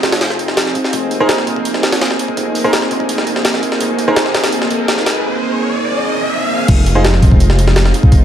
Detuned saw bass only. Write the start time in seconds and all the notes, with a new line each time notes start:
0.04 F1
0.93 F1
1.20 F1
1.47 F1
2.37 F1
2.64 F1
2.91 F1
3.81 F1
4.08 F1
4.35 F1
6.68 F1
6.96 F1
7.23 F1
8.12 F1